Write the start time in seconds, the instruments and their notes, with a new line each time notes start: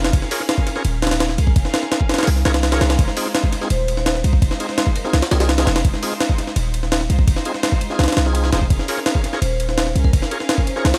Already playing: 808-style bass F1, string section C#4 G#4 A#4 F5, vibraphone F4
0.04 snare, ride
0.13 808-style bass F1, string section C#4 G#4 A#4 F5, kick, ride
0.22 snare
0.31 tonewheel organ F4 G#4 A#4 C#5, open hi-hat
0.40 snare
0.49 snare, ride
0.58 kick
0.67 snare, ride
0.76 tonewheel organ F4 G#4 A#4 C#5, snare
0.85 808-style bass D#1, ride
1.02 snare, ride
1.07 snare, ride
1.11 snare, ride
1.20 snare, ride
1.29 snare
1.38 808-style bass C2, string section C#4 G#4 A#4 F5, ride
1.47 kick
1.56 808-style bass F1, string section C#4 G#4 A#4 F5, kick, ride
1.65 snare
1.74 snare, ride
1.83 snare
1.92 snare, ride
2.01 kick
2.09 snare, ride
2.14 snare, ride
2.18 tonewheel organ F4 G#4 A#4 C#5, snare, ride
2.23 snare, ride
2.27 808-style bass C2, open hi-hat
2.36 snare
2.45 808-style bass C2, tonewheel organ F4 G#4 A#4 C#5, snare, ride
2.54 snare, ride
2.63 snare, ride
2.72 tonewheel organ F4 G#4 A#4 C#5, snare, ride
2.81 808-style bass C2, string section C#4 G#4 A#4 F5, snare, ride
2.90 snare, ride
2.98 808-style bass F1, string section G#3 D#4 F4 C5, kick, ride
3.08 snare
3.17 tonewheel organ C4 D#4 F4 G#4, open hi-hat
3.26 snare
3.35 snare, ride
3.44 kick
3.53 snare, ride
3.61 tonewheel organ C4 D#4 F4 G#4, snare
3.70 808-style bass D#1, vibraphone C5, ride
3.79 vibraphone C5
3.88 ride
3.97 vibraphone C5, snare
4.06 snare, ride
4.15 snare
4.24 808-style bass C2, string section G#3 D#4 F4 C5, ride
4.33 kick
4.42 808-style bass F1, string section G#3 D#4 F4 C5, kick, ride
4.51 snare
4.60 tonewheel organ C4 D#4 F4 G#4, ride
4.69 snare
4.78 snare, ride
4.87 kick
4.95 vibraphone A#4, ride
5.05 tonewheel organ C4 D#4 F4 G#4, snare
5.13 808-style bass C2, snare, ride
5.22 snare, ride
5.31 808-style bass C2, tonewheel organ C4 D#4 F4 G#4, vibraphone A#4, snare, ride
5.40 tonewheel organ C4 D#4 F4 G#4, vibraphone A#4, snare, ride
5.49 snare, ride
5.58 tonewheel organ C4 D#4 F4 G#4, snare, ride
5.67 808-style bass F1, string section G#3 D#4 F4 C5, snare, ride
5.76 snare, ride
5.85 808-style bass F1, string section G#3 D#4 F4 C5, kick, ride
5.94 snare
6.03 tonewheel organ C4 D#4 F4 G#4, open hi-hat
6.12 snare
6.21 snare, ride
6.29 kick
6.38 snare, ride
6.47 snare
6.56 808-style bass D#1, ride
6.74 ride
6.83 snare
6.92 snare, ride
7.01 snare
7.10 808-style bass C2, string section G#3 D#4 F4 C5, ride
7.19 kick
7.27 808-style bass F1, string section G#3 D#4 F4 C5, kick, ride
7.36 snare
7.45 tonewheel organ C4 D#4 F4 G#4, ride
7.54 snare
7.63 snare, ride
7.72 kick
7.81 ride
7.90 tonewheel organ C4 D#4 F4 G#4, snare
7.99 808-style bass C2, snare, ride
8.04 snare, ride
8.08 snare, ride
8.12 snare, ride
8.17 808-style bass C2, snare, ride
8.26 tonewheel organ C4 D#4 F4 G#4, snare
8.35 ride
8.44 snare
8.52 808-style bass F1, string section G#3 D#4 F4 C5, tonewheel organ C4 D#4 F4 G#4, snare, ride
8.61 kick
8.70 808-style bass F1, string section C#4 G#4 A#4 F5, kick, ride
8.79 snare
8.88 tonewheel organ F4 G#4 A#4 C#5, open hi-hat
8.97 snare
9.06 snare, ride
9.15 kick
9.24 snare, ride
9.33 tonewheel organ F4 G#4 A#4 C#5, snare
9.42 808-style bass D#1, vibraphone C5, ride
9.51 vibraphone C5
9.60 ride
9.69 vibraphone C5, snare
9.78 snare, ride
9.87 snare
9.96 808-style bass C2, string section C#4 G#4 A#4 F5, ride
10.04 vibraphone A#4, kick
10.13 808-style bass F1, string section C#4 G#4 A#4 F5, vibraphone A#4, kick, ride
10.22 snare
10.31 tonewheel organ F4 G#4 A#4 C#5, ride
10.40 snare
10.49 snare, ride
10.58 kick
10.67 vibraphone C5, ride
10.76 tonewheel organ F4 G#4 A#4 C#5, snare
10.85 808-style bass C2, snare, ride
10.94 snare, ride